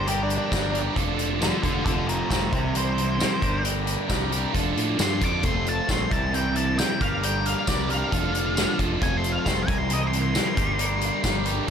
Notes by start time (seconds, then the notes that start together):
Already playing: G1
0.06 G3 D4 G4 A#4, closed hi-hat
0.23 D4
0.30 closed hi-hat
0.38 D4
0.50 G1 G3 D4 G4 A#4, kick, snare, closed hi-hat, tambourine
0.73 G3 D4 G4 A#4, closed hi-hat
0.95 F1 D3 F3 D4 F4 A4, kick, closed hi-hat
1.19 closed hi-hat
1.40 D3 F3 D4 F4 A4 D5, snare, closed hi-hat, tambourine
1.63 F1 D3 F3 D4 F4 A4 D5, kick, closed hi-hat
1.85 F1 F3 A3 C4 F4 A4 D5, kick, closed hi-hat
2.08 G#4 C5, closed hi-hat
2.29 F1 F3 A3 C4 F4 G#4 A4 C5, kick, snare, closed hi-hat, tambourine
2.52 C2 C3 E3 G3 C4 E4 G4 A#4 C5, kick, closed hi-hat
2.74 C3 E3 G3 C4 E4 A#4 C5, closed hi-hat
2.98 closed hi-hat
3.18 C3 E3 G3 C4 E4 A#4, snare, closed hi-hat, tambourine
3.41 G1 G3 D4 G4 A#4, kick, closed hi-hat
3.64 G3 D4 G4 A#4, closed hi-hat
3.87 closed hi-hat
4.09 C2 G3 D4 G4 A#4, kick, snare, closed hi-hat, tambourine
4.31 G3 D4 G4 A#4, closed hi-hat
4.53 F1 D3 F3 D4 F4 A4, kick, closed hi-hat
4.76 A2, closed hi-hat
4.98 G2 D3 F3 D4 F4 A4, snare, closed hi-hat, tambourine
5.02 C6
5.21 F2 D3 F3 D4 F4 A4 D6, kick, closed hi-hat
5.43 F1 F3 A3 C4 F4 A4 C6, kick, closed hi-hat
5.66 A5, closed hi-hat
5.88 A#1 F3 A3 C4 F4 A4 C6, kick, snare, closed hi-hat, tambourine
6.10 C2 C3 E3 G3 C4 E4 A#4 A5, kick, closed hi-hat
6.33 C3 E3 G3 C4 E4 A#4 G5, closed hi-hat
6.56 A5, closed hi-hat
6.77 C3 E3 G3 C4 E4 A#4 G5, snare, closed hi-hat, tambourine
7.01 G1 G3 D4 G4 A#4 F5, kick, closed hi-hat
7.23 G3 D4 G4 A#4 G5, closed hi-hat
7.46 F5, closed hi-hat
7.67 C2 G3 D4 G4 A#4 D5, kick, snare, closed hi-hat, tambourine
7.89 G3 D4 G4 A#4 F5, closed hi-hat
8.11 F1 D3 F3 D4 F4 A4, kick, closed hi-hat
8.35 closed hi-hat
8.56 D3 F3 D4 F4 A4, snare, closed hi-hat, tambourine
8.79 F1 D3 F3 D4 F4 A4, kick, closed hi-hat
9.02 F1 F3 A3 C4 F4 A4 G#5, kick, closed hi-hat
9.17 C6
9.24 closed hi-hat
9.32 F5
9.46 F1 F3 A3 C4 F4 A4 C6, kick, snare, closed hi-hat, tambourine
9.63 G#5
9.67 C2 C3 E3 G3 C4 E4 A#4, kick, closed hi-hat
9.78 C6
9.90 C3 E3 G3 C4 E4 A#4 D#5, closed hi-hat
10.07 C6
10.13 closed hi-hat
10.22 C6
10.34 C3 E3 G3 C4 E4 A#4, snare, closed hi-hat, tambourine
10.56 G1 G3 D4 G4 A#4, kick, closed hi-hat
10.79 G3 D4 G4 A#4, closed hi-hat
11.01 closed hi-hat
11.23 G1 G3 D4 G4 A#4, kick, snare, closed hi-hat, tambourine
11.45 G3 D4 G4 A#4, closed hi-hat
11.66 F3